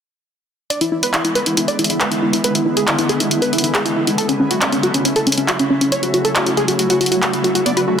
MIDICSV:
0, 0, Header, 1, 5, 480
1, 0, Start_track
1, 0, Key_signature, 3, "minor"
1, 0, Tempo, 434783
1, 776, Time_signature, 4, 2, 24, 8
1, 8832, End_track
2, 0, Start_track
2, 0, Title_t, "Digital synth lead"
2, 0, Program_c, 0, 84
2, 776, Note_on_c, 0, 74, 92
2, 879, Note_off_c, 0, 74, 0
2, 897, Note_on_c, 0, 64, 60
2, 999, Note_off_c, 0, 64, 0
2, 1015, Note_on_c, 0, 64, 59
2, 1118, Note_off_c, 0, 64, 0
2, 1138, Note_on_c, 0, 71, 88
2, 1240, Note_off_c, 0, 71, 0
2, 1259, Note_on_c, 0, 64, 59
2, 1360, Note_off_c, 0, 64, 0
2, 1377, Note_on_c, 0, 64, 61
2, 1479, Note_off_c, 0, 64, 0
2, 1496, Note_on_c, 0, 71, 94
2, 1599, Note_off_c, 0, 71, 0
2, 1617, Note_on_c, 0, 64, 61
2, 1719, Note_off_c, 0, 64, 0
2, 1737, Note_on_c, 0, 64, 58
2, 1839, Note_off_c, 0, 64, 0
2, 1856, Note_on_c, 0, 74, 87
2, 1959, Note_off_c, 0, 74, 0
2, 1974, Note_on_c, 0, 64, 61
2, 2078, Note_off_c, 0, 64, 0
2, 2097, Note_on_c, 0, 64, 61
2, 2199, Note_off_c, 0, 64, 0
2, 2217, Note_on_c, 0, 71, 87
2, 2319, Note_off_c, 0, 71, 0
2, 2337, Note_on_c, 0, 64, 59
2, 2440, Note_off_c, 0, 64, 0
2, 2458, Note_on_c, 0, 64, 59
2, 2560, Note_off_c, 0, 64, 0
2, 2578, Note_on_c, 0, 64, 59
2, 2680, Note_off_c, 0, 64, 0
2, 2698, Note_on_c, 0, 71, 92
2, 2800, Note_off_c, 0, 71, 0
2, 2818, Note_on_c, 0, 64, 62
2, 2920, Note_off_c, 0, 64, 0
2, 2936, Note_on_c, 0, 64, 61
2, 3039, Note_off_c, 0, 64, 0
2, 3056, Note_on_c, 0, 68, 89
2, 3159, Note_off_c, 0, 68, 0
2, 3177, Note_on_c, 0, 64, 59
2, 3279, Note_off_c, 0, 64, 0
2, 3295, Note_on_c, 0, 64, 60
2, 3399, Note_off_c, 0, 64, 0
2, 3417, Note_on_c, 0, 68, 92
2, 3519, Note_off_c, 0, 68, 0
2, 3536, Note_on_c, 0, 64, 60
2, 3639, Note_off_c, 0, 64, 0
2, 3655, Note_on_c, 0, 64, 59
2, 3758, Note_off_c, 0, 64, 0
2, 3775, Note_on_c, 0, 71, 86
2, 3878, Note_off_c, 0, 71, 0
2, 3896, Note_on_c, 0, 64, 60
2, 3999, Note_off_c, 0, 64, 0
2, 4015, Note_on_c, 0, 64, 58
2, 4118, Note_off_c, 0, 64, 0
2, 4135, Note_on_c, 0, 68, 90
2, 4238, Note_off_c, 0, 68, 0
2, 4256, Note_on_c, 0, 64, 59
2, 4359, Note_off_c, 0, 64, 0
2, 4378, Note_on_c, 0, 64, 61
2, 4480, Note_off_c, 0, 64, 0
2, 4496, Note_on_c, 0, 64, 60
2, 4599, Note_off_c, 0, 64, 0
2, 4615, Note_on_c, 0, 69, 96
2, 4718, Note_off_c, 0, 69, 0
2, 4735, Note_on_c, 0, 61, 62
2, 4838, Note_off_c, 0, 61, 0
2, 4857, Note_on_c, 0, 61, 59
2, 4959, Note_off_c, 0, 61, 0
2, 4977, Note_on_c, 0, 66, 86
2, 5079, Note_off_c, 0, 66, 0
2, 5096, Note_on_c, 0, 61, 60
2, 5199, Note_off_c, 0, 61, 0
2, 5216, Note_on_c, 0, 61, 61
2, 5319, Note_off_c, 0, 61, 0
2, 5336, Note_on_c, 0, 66, 90
2, 5439, Note_off_c, 0, 66, 0
2, 5454, Note_on_c, 0, 61, 59
2, 5558, Note_off_c, 0, 61, 0
2, 5575, Note_on_c, 0, 61, 60
2, 5678, Note_off_c, 0, 61, 0
2, 5695, Note_on_c, 0, 69, 89
2, 5798, Note_off_c, 0, 69, 0
2, 5814, Note_on_c, 0, 61, 63
2, 5918, Note_off_c, 0, 61, 0
2, 5935, Note_on_c, 0, 61, 58
2, 6038, Note_off_c, 0, 61, 0
2, 6055, Note_on_c, 0, 66, 88
2, 6158, Note_off_c, 0, 66, 0
2, 6174, Note_on_c, 0, 61, 59
2, 6278, Note_off_c, 0, 61, 0
2, 6294, Note_on_c, 0, 61, 62
2, 6398, Note_off_c, 0, 61, 0
2, 6416, Note_on_c, 0, 61, 60
2, 6519, Note_off_c, 0, 61, 0
2, 6536, Note_on_c, 0, 73, 94
2, 6639, Note_off_c, 0, 73, 0
2, 6657, Note_on_c, 0, 66, 60
2, 6759, Note_off_c, 0, 66, 0
2, 6777, Note_on_c, 0, 66, 62
2, 6879, Note_off_c, 0, 66, 0
2, 6896, Note_on_c, 0, 69, 88
2, 6999, Note_off_c, 0, 69, 0
2, 7017, Note_on_c, 0, 66, 60
2, 7119, Note_off_c, 0, 66, 0
2, 7136, Note_on_c, 0, 66, 59
2, 7239, Note_off_c, 0, 66, 0
2, 7255, Note_on_c, 0, 68, 94
2, 7358, Note_off_c, 0, 68, 0
2, 7375, Note_on_c, 0, 66, 62
2, 7478, Note_off_c, 0, 66, 0
2, 7495, Note_on_c, 0, 66, 61
2, 7598, Note_off_c, 0, 66, 0
2, 7617, Note_on_c, 0, 66, 91
2, 7719, Note_off_c, 0, 66, 0
2, 7736, Note_on_c, 0, 66, 63
2, 7839, Note_off_c, 0, 66, 0
2, 7856, Note_on_c, 0, 66, 59
2, 7959, Note_off_c, 0, 66, 0
2, 7978, Note_on_c, 0, 66, 88
2, 8080, Note_off_c, 0, 66, 0
2, 8098, Note_on_c, 0, 66, 60
2, 8200, Note_off_c, 0, 66, 0
2, 8217, Note_on_c, 0, 66, 60
2, 8319, Note_off_c, 0, 66, 0
2, 8337, Note_on_c, 0, 66, 59
2, 8439, Note_off_c, 0, 66, 0
2, 8456, Note_on_c, 0, 74, 96
2, 8559, Note_off_c, 0, 74, 0
2, 8575, Note_on_c, 0, 66, 61
2, 8679, Note_off_c, 0, 66, 0
2, 8697, Note_on_c, 0, 66, 60
2, 8799, Note_off_c, 0, 66, 0
2, 8832, End_track
3, 0, Start_track
3, 0, Title_t, "Synth pluck"
3, 0, Program_c, 1, 84
3, 774, Note_on_c, 1, 74, 91
3, 878, Note_off_c, 1, 74, 0
3, 894, Note_on_c, 1, 64, 60
3, 998, Note_off_c, 1, 64, 0
3, 1014, Note_on_c, 1, 64, 60
3, 1118, Note_off_c, 1, 64, 0
3, 1134, Note_on_c, 1, 71, 89
3, 1238, Note_off_c, 1, 71, 0
3, 1254, Note_on_c, 1, 64, 59
3, 1358, Note_off_c, 1, 64, 0
3, 1374, Note_on_c, 1, 64, 58
3, 1478, Note_off_c, 1, 64, 0
3, 1494, Note_on_c, 1, 71, 91
3, 1598, Note_off_c, 1, 71, 0
3, 1615, Note_on_c, 1, 64, 60
3, 1719, Note_off_c, 1, 64, 0
3, 1735, Note_on_c, 1, 64, 60
3, 1839, Note_off_c, 1, 64, 0
3, 1855, Note_on_c, 1, 74, 90
3, 1958, Note_off_c, 1, 74, 0
3, 1975, Note_on_c, 1, 64, 58
3, 2078, Note_off_c, 1, 64, 0
3, 2095, Note_on_c, 1, 64, 56
3, 2198, Note_off_c, 1, 64, 0
3, 2215, Note_on_c, 1, 71, 91
3, 2319, Note_off_c, 1, 71, 0
3, 2334, Note_on_c, 1, 64, 60
3, 2438, Note_off_c, 1, 64, 0
3, 2454, Note_on_c, 1, 64, 58
3, 2558, Note_off_c, 1, 64, 0
3, 2576, Note_on_c, 1, 64, 61
3, 2679, Note_off_c, 1, 64, 0
3, 2697, Note_on_c, 1, 71, 92
3, 2799, Note_off_c, 1, 71, 0
3, 2816, Note_on_c, 1, 64, 60
3, 2919, Note_off_c, 1, 64, 0
3, 2936, Note_on_c, 1, 64, 60
3, 3039, Note_off_c, 1, 64, 0
3, 3057, Note_on_c, 1, 68, 92
3, 3159, Note_off_c, 1, 68, 0
3, 3175, Note_on_c, 1, 64, 59
3, 3278, Note_off_c, 1, 64, 0
3, 3297, Note_on_c, 1, 64, 60
3, 3400, Note_off_c, 1, 64, 0
3, 3415, Note_on_c, 1, 68, 90
3, 3518, Note_off_c, 1, 68, 0
3, 3535, Note_on_c, 1, 64, 61
3, 3638, Note_off_c, 1, 64, 0
3, 3655, Note_on_c, 1, 64, 61
3, 3758, Note_off_c, 1, 64, 0
3, 3774, Note_on_c, 1, 71, 90
3, 3878, Note_off_c, 1, 71, 0
3, 3893, Note_on_c, 1, 64, 59
3, 3997, Note_off_c, 1, 64, 0
3, 4016, Note_on_c, 1, 64, 57
3, 4119, Note_off_c, 1, 64, 0
3, 4136, Note_on_c, 1, 68, 90
3, 4239, Note_off_c, 1, 68, 0
3, 4254, Note_on_c, 1, 64, 60
3, 4358, Note_off_c, 1, 64, 0
3, 4375, Note_on_c, 1, 64, 59
3, 4478, Note_off_c, 1, 64, 0
3, 4497, Note_on_c, 1, 64, 60
3, 4599, Note_off_c, 1, 64, 0
3, 4614, Note_on_c, 1, 69, 96
3, 4718, Note_off_c, 1, 69, 0
3, 4735, Note_on_c, 1, 61, 62
3, 4838, Note_off_c, 1, 61, 0
3, 4856, Note_on_c, 1, 61, 64
3, 4959, Note_off_c, 1, 61, 0
3, 4977, Note_on_c, 1, 66, 93
3, 5079, Note_off_c, 1, 66, 0
3, 5098, Note_on_c, 1, 61, 61
3, 5200, Note_off_c, 1, 61, 0
3, 5217, Note_on_c, 1, 61, 61
3, 5319, Note_off_c, 1, 61, 0
3, 5337, Note_on_c, 1, 66, 86
3, 5439, Note_off_c, 1, 66, 0
3, 5459, Note_on_c, 1, 61, 60
3, 5560, Note_off_c, 1, 61, 0
3, 5577, Note_on_c, 1, 61, 62
3, 5679, Note_off_c, 1, 61, 0
3, 5696, Note_on_c, 1, 69, 89
3, 5799, Note_off_c, 1, 69, 0
3, 5817, Note_on_c, 1, 61, 60
3, 5919, Note_off_c, 1, 61, 0
3, 5937, Note_on_c, 1, 61, 58
3, 6039, Note_off_c, 1, 61, 0
3, 6056, Note_on_c, 1, 66, 89
3, 6159, Note_off_c, 1, 66, 0
3, 6178, Note_on_c, 1, 61, 61
3, 6280, Note_off_c, 1, 61, 0
3, 6297, Note_on_c, 1, 61, 61
3, 6399, Note_off_c, 1, 61, 0
3, 6416, Note_on_c, 1, 61, 61
3, 6519, Note_off_c, 1, 61, 0
3, 6536, Note_on_c, 1, 73, 90
3, 6639, Note_off_c, 1, 73, 0
3, 6657, Note_on_c, 1, 66, 63
3, 6759, Note_off_c, 1, 66, 0
3, 6777, Note_on_c, 1, 66, 63
3, 6879, Note_off_c, 1, 66, 0
3, 6896, Note_on_c, 1, 69, 90
3, 6999, Note_off_c, 1, 69, 0
3, 7016, Note_on_c, 1, 66, 61
3, 7119, Note_off_c, 1, 66, 0
3, 7136, Note_on_c, 1, 66, 59
3, 7239, Note_off_c, 1, 66, 0
3, 7257, Note_on_c, 1, 68, 88
3, 7359, Note_off_c, 1, 68, 0
3, 7377, Note_on_c, 1, 66, 60
3, 7479, Note_off_c, 1, 66, 0
3, 7496, Note_on_c, 1, 66, 60
3, 7599, Note_off_c, 1, 66, 0
3, 7614, Note_on_c, 1, 66, 89
3, 7718, Note_off_c, 1, 66, 0
3, 7734, Note_on_c, 1, 66, 58
3, 7838, Note_off_c, 1, 66, 0
3, 7855, Note_on_c, 1, 66, 58
3, 7958, Note_off_c, 1, 66, 0
3, 7975, Note_on_c, 1, 66, 90
3, 8078, Note_off_c, 1, 66, 0
3, 8096, Note_on_c, 1, 66, 59
3, 8199, Note_off_c, 1, 66, 0
3, 8214, Note_on_c, 1, 66, 59
3, 8318, Note_off_c, 1, 66, 0
3, 8335, Note_on_c, 1, 66, 62
3, 8438, Note_off_c, 1, 66, 0
3, 8454, Note_on_c, 1, 74, 94
3, 8558, Note_off_c, 1, 74, 0
3, 8575, Note_on_c, 1, 66, 61
3, 8678, Note_off_c, 1, 66, 0
3, 8694, Note_on_c, 1, 66, 60
3, 8798, Note_off_c, 1, 66, 0
3, 8832, End_track
4, 0, Start_track
4, 0, Title_t, "Synth arpeggio sound"
4, 0, Program_c, 2, 84
4, 8456, Note_on_c, 2, 59, 99
4, 8522, Note_off_c, 2, 59, 0
4, 8575, Note_on_c, 2, 71, 97
4, 8641, Note_off_c, 2, 71, 0
4, 8696, Note_on_c, 2, 57, 73
4, 8762, Note_off_c, 2, 57, 0
4, 8832, End_track
5, 0, Start_track
5, 0, Title_t, "Drums"
5, 776, Note_on_c, 9, 42, 75
5, 886, Note_off_c, 9, 42, 0
5, 895, Note_on_c, 9, 42, 47
5, 1006, Note_off_c, 9, 42, 0
5, 1136, Note_on_c, 9, 42, 46
5, 1246, Note_off_c, 9, 42, 0
5, 1256, Note_on_c, 9, 39, 111
5, 1256, Note_on_c, 9, 42, 75
5, 1366, Note_off_c, 9, 39, 0
5, 1366, Note_off_c, 9, 42, 0
5, 1376, Note_on_c, 9, 42, 48
5, 1486, Note_off_c, 9, 42, 0
5, 1495, Note_on_c, 9, 42, 34
5, 1606, Note_off_c, 9, 42, 0
5, 1614, Note_on_c, 9, 42, 48
5, 1725, Note_off_c, 9, 42, 0
5, 1735, Note_on_c, 9, 42, 72
5, 1846, Note_off_c, 9, 42, 0
5, 1855, Note_on_c, 9, 42, 48
5, 1966, Note_off_c, 9, 42, 0
5, 1976, Note_on_c, 9, 42, 46
5, 2035, Note_off_c, 9, 42, 0
5, 2035, Note_on_c, 9, 42, 56
5, 2096, Note_off_c, 9, 42, 0
5, 2096, Note_on_c, 9, 42, 49
5, 2206, Note_off_c, 9, 42, 0
5, 2215, Note_on_c, 9, 39, 107
5, 2215, Note_on_c, 9, 42, 72
5, 2326, Note_off_c, 9, 39, 0
5, 2326, Note_off_c, 9, 42, 0
5, 2335, Note_on_c, 9, 42, 48
5, 2446, Note_off_c, 9, 42, 0
5, 2576, Note_on_c, 9, 42, 49
5, 2686, Note_off_c, 9, 42, 0
5, 2696, Note_on_c, 9, 42, 72
5, 2806, Note_off_c, 9, 42, 0
5, 2816, Note_on_c, 9, 42, 45
5, 2926, Note_off_c, 9, 42, 0
5, 3056, Note_on_c, 9, 42, 48
5, 3166, Note_off_c, 9, 42, 0
5, 3176, Note_on_c, 9, 39, 113
5, 3176, Note_on_c, 9, 42, 71
5, 3286, Note_off_c, 9, 39, 0
5, 3286, Note_off_c, 9, 42, 0
5, 3295, Note_on_c, 9, 42, 49
5, 3406, Note_off_c, 9, 42, 0
5, 3415, Note_on_c, 9, 42, 33
5, 3526, Note_off_c, 9, 42, 0
5, 3536, Note_on_c, 9, 42, 48
5, 3646, Note_off_c, 9, 42, 0
5, 3655, Note_on_c, 9, 42, 72
5, 3766, Note_off_c, 9, 42, 0
5, 3776, Note_on_c, 9, 42, 47
5, 3887, Note_off_c, 9, 42, 0
5, 3897, Note_on_c, 9, 42, 44
5, 3957, Note_off_c, 9, 42, 0
5, 3957, Note_on_c, 9, 42, 57
5, 4017, Note_off_c, 9, 42, 0
5, 4017, Note_on_c, 9, 42, 48
5, 4127, Note_off_c, 9, 42, 0
5, 4137, Note_on_c, 9, 39, 107
5, 4137, Note_on_c, 9, 42, 68
5, 4247, Note_off_c, 9, 39, 0
5, 4247, Note_off_c, 9, 42, 0
5, 4257, Note_on_c, 9, 42, 45
5, 4367, Note_off_c, 9, 42, 0
5, 4497, Note_on_c, 9, 42, 47
5, 4607, Note_off_c, 9, 42, 0
5, 4617, Note_on_c, 9, 42, 71
5, 4727, Note_off_c, 9, 42, 0
5, 4736, Note_on_c, 9, 42, 44
5, 4846, Note_off_c, 9, 42, 0
5, 4976, Note_on_c, 9, 42, 46
5, 5086, Note_off_c, 9, 42, 0
5, 5096, Note_on_c, 9, 39, 110
5, 5096, Note_on_c, 9, 42, 73
5, 5206, Note_off_c, 9, 39, 0
5, 5206, Note_off_c, 9, 42, 0
5, 5216, Note_on_c, 9, 42, 45
5, 5326, Note_off_c, 9, 42, 0
5, 5336, Note_on_c, 9, 42, 32
5, 5446, Note_off_c, 9, 42, 0
5, 5457, Note_on_c, 9, 42, 46
5, 5567, Note_off_c, 9, 42, 0
5, 5576, Note_on_c, 9, 42, 67
5, 5686, Note_off_c, 9, 42, 0
5, 5696, Note_on_c, 9, 42, 43
5, 5806, Note_off_c, 9, 42, 0
5, 5815, Note_on_c, 9, 42, 42
5, 5875, Note_off_c, 9, 42, 0
5, 5875, Note_on_c, 9, 42, 56
5, 5935, Note_off_c, 9, 42, 0
5, 5935, Note_on_c, 9, 42, 44
5, 6045, Note_off_c, 9, 42, 0
5, 6055, Note_on_c, 9, 39, 110
5, 6055, Note_on_c, 9, 42, 69
5, 6165, Note_off_c, 9, 39, 0
5, 6165, Note_off_c, 9, 42, 0
5, 6176, Note_on_c, 9, 42, 44
5, 6286, Note_off_c, 9, 42, 0
5, 6417, Note_on_c, 9, 42, 45
5, 6527, Note_off_c, 9, 42, 0
5, 6536, Note_on_c, 9, 42, 69
5, 6646, Note_off_c, 9, 42, 0
5, 6656, Note_on_c, 9, 42, 43
5, 6767, Note_off_c, 9, 42, 0
5, 6777, Note_on_c, 9, 42, 31
5, 6887, Note_off_c, 9, 42, 0
5, 6897, Note_on_c, 9, 42, 44
5, 7007, Note_off_c, 9, 42, 0
5, 7017, Note_on_c, 9, 39, 106
5, 7017, Note_on_c, 9, 42, 68
5, 7128, Note_off_c, 9, 39, 0
5, 7128, Note_off_c, 9, 42, 0
5, 7137, Note_on_c, 9, 42, 45
5, 7247, Note_off_c, 9, 42, 0
5, 7257, Note_on_c, 9, 42, 30
5, 7367, Note_off_c, 9, 42, 0
5, 7377, Note_on_c, 9, 42, 44
5, 7487, Note_off_c, 9, 42, 0
5, 7497, Note_on_c, 9, 42, 68
5, 7607, Note_off_c, 9, 42, 0
5, 7617, Note_on_c, 9, 42, 44
5, 7727, Note_off_c, 9, 42, 0
5, 7737, Note_on_c, 9, 42, 40
5, 7797, Note_off_c, 9, 42, 0
5, 7797, Note_on_c, 9, 42, 54
5, 7857, Note_off_c, 9, 42, 0
5, 7857, Note_on_c, 9, 42, 45
5, 7968, Note_off_c, 9, 42, 0
5, 7977, Note_on_c, 9, 39, 103
5, 7977, Note_on_c, 9, 42, 68
5, 8088, Note_off_c, 9, 39, 0
5, 8088, Note_off_c, 9, 42, 0
5, 8097, Note_on_c, 9, 42, 43
5, 8208, Note_off_c, 9, 42, 0
5, 8218, Note_on_c, 9, 42, 30
5, 8328, Note_off_c, 9, 42, 0
5, 8337, Note_on_c, 9, 42, 44
5, 8448, Note_off_c, 9, 42, 0
5, 8458, Note_on_c, 9, 42, 71
5, 8568, Note_off_c, 9, 42, 0
5, 8577, Note_on_c, 9, 42, 42
5, 8687, Note_off_c, 9, 42, 0
5, 8832, End_track
0, 0, End_of_file